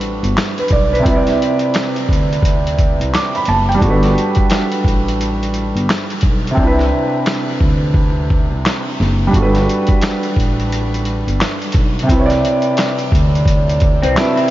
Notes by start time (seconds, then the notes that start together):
Already playing: A1 G3 D4 F#4 A4 B4 E5
0.01 closed hi-hat
0.23 G1, closed hi-hat
0.38 snare, clap, closed hi-hat
0.58 B4, closed hi-hat
0.68 B1, kick, closed hi-hat
0.72 D5
0.93 B4, closed hi-hat
0.99 C3 C4
1.05 C2 E4, kick, closed hi-hat
1.11 B4
1.15 D5
1.27 snare, closed hi-hat
1.42 closed hi-hat
1.59 closed hi-hat
1.74 snare, clap, closed hi-hat
1.96 closed hi-hat
2.09 D2, kick, closed hi-hat
2.33 closed hi-hat
2.42 kick, closed hi-hat
2.67 closed hi-hat
2.79 kick, closed hi-hat
3.00 C2, closed hi-hat
3.14 D6, snare, clap, closed hi-hat
3.35 B5, closed hi-hat
3.45 F#1 A5, closed hi-hat
3.69 G5, closed hi-hat
3.74 G3
3.78 G1 D4 F#4, kick, closed hi-hat
3.86 A4 B4
4.03 snare, closed hi-hat
4.18 closed hi-hat
4.35 kick, closed hi-hat
4.50 snare, clap, closed hi-hat
4.72 closed hi-hat
4.84 A1, kick, closed hi-hat
5.08 closed hi-hat
5.21 closed hi-hat
5.43 closed hi-hat
5.54 closed hi-hat
5.75 G1, closed hi-hat
5.90 snare, clap, closed hi-hat
6.10 closed hi-hat
6.21 B1, kick, closed hi-hat
6.47 C3, closed hi-hat
6.55 C2 C4, kick
6.59 D4 E4
6.67 B4
6.79 snare
7.27 snare, clap
7.61 D2, kick
7.94 kick
8.30 kick
8.51 C2
8.66 snare, clap
9.00 F#1, snare
9.27 G3 D4
9.33 G1 F#4, kick, closed hi-hat
9.39 A4 B4
9.55 snare, closed hi-hat
9.69 closed hi-hat
9.87 kick, closed hi-hat
10.02 snare, clap, closed hi-hat
10.23 closed hi-hat
10.36 A1, kick, closed hi-hat
10.60 closed hi-hat
10.72 closed hi-hat
10.94 closed hi-hat
11.05 closed hi-hat
11.27 G1, closed hi-hat
11.41 snare, clap, closed hi-hat
11.62 closed hi-hat
11.72 B1, kick, closed hi-hat
11.99 C3, closed hi-hat
12.07 C2 C4, kick, closed hi-hat
12.11 E4 B4
12.19 C#5
12.26 D5
12.30 snare, closed hi-hat
12.45 closed hi-hat
12.62 closed hi-hat
12.77 snare, clap, closed hi-hat
12.99 closed hi-hat
13.12 D2, kick, closed hi-hat
13.35 closed hi-hat
13.46 kick, closed hi-hat
13.69 closed hi-hat
13.80 kick, closed hi-hat
14.02 C2 E3 C4, closed hi-hat
14.14 C3 F#3 C4 D4 E4, snare, clap, closed hi-hat
14.20 B4 E5
14.36 G3 E4, closed hi-hat